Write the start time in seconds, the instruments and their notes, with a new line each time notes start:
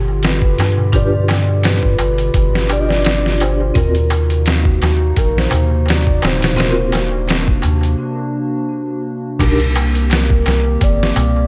Already playing: analog synth bass G1, ambient pad B2 D3 F4 G4, soft synth lead G4
0.08 darbuka tek
0.23 soft synth lead B4, snare, closed hi-hat, darbuka tek
0.42 kick, darbuka tek
0.58 analog synth bass G2, snare, closed hi-hat, darbuka tek
0.77 darbuka tek, darbuka dum
0.93 vibraphone D4 F4 G4 B4, soft synth lead D5, kick, closed hi-hat, darbuka tek, darbuka dum
1.12 darbuka tek
1.28 snare, closed hi-hat, darbuka tek
1.48 darbuka tek
1.63 soft synth lead B4, snare, closed hi-hat, darbuka tek
1.82 kick, darbuka tek
1.99 analog synth bass G1, closed hi-hat, darbuka tek
2.18 closed hi-hat, darbuka tek
2.34 analog synth bass G1, kick, closed hi-hat, darbuka tek
2.53 snare, darbuka tek
2.67 vibraphone D4 F4 G4, closed hi-hat, darbuka tek
2.72 vibraphone D5, soft synth lead D5
2.80 soft synth lead D#5
2.88 soft synth lead D5, snare, darbuka tek
3.05 snare, closed hi-hat, darbuka tek
3.25 snare, darbuka tek
3.40 soft synth lead C5, closed hi-hat, darbuka tek
3.60 darbuka tek
3.74 analog synth bass D#2, ambient pad C3 A#3 D#4 F#4, vibraphone C4 F4 F#4 A#4, soft synth lead A#4, kick, closed hi-hat, darbuka tek, darbuka dum
3.95 closed hi-hat, darbuka tek
4.10 closed hi-hat, darbuka tek
4.30 closed hi-hat, darbuka tek
4.46 soft synth lead F#4, snare, closed hi-hat, darbuka tek
4.65 kick, darbuka tek
4.82 analog synth bass D#2, snare, closed hi-hat, darbuka tek
5.00 darbuka tek
5.16 analog synth bass A#1, soft synth lead A#4, kick, closed hi-hat, darbuka tek
5.37 soft synth lead C5, snare, darbuka tek
5.51 analog synth bass D#2, closed hi-hat, darbuka tek, darbuka dum
5.70 darbuka tek
5.86 soft synth lead D5, closed hi-hat, darbuka tek
5.90 snare
6.06 kick, darbuka tek
6.22 analog synth bass D#1, snare, closed hi-hat, darbuka tek
6.27 soft synth lead C5
6.40 snare, closed hi-hat, darbuka tek, darbuka dum
6.56 vibraphone C4 F4 F#4 A#4, ambient pad D4, snare, closed hi-hat, darbuka tek, darbuka dum
6.75 darbuka tek
6.92 snare, closed hi-hat, darbuka tek
7.11 darbuka tek
7.27 snare, closed hi-hat, darbuka tek
7.46 kick, darbuka tek
7.62 analog synth bass D#2, closed hi-hat, darbuka tek
7.81 closed hi-hat, darbuka tek
9.39 analog synth bass C2, ambient pad D#3 A#3 C4 G4, vibraphone D4 D#4 G4 A#4, kick, closed hi-hat, crash, darbuka tek, darbuka dum
9.59 closed hi-hat, darbuka tek
9.76 closed hi-hat, darbuka tek
9.94 closed hi-hat, darbuka tek
10.10 soft synth lead A#4, snare, closed hi-hat, darbuka tek
10.30 kick, darbuka tek
10.46 analog synth bass C2, snare, closed hi-hat, darbuka tek
10.64 darbuka tek
10.81 analog synth bass G1, soft synth lead D5, kick, closed hi-hat, darbuka tek
10.99 snare, darbuka tek
11.16 analog synth bass C2, closed hi-hat, darbuka tek, darbuka dum
11.36 darbuka tek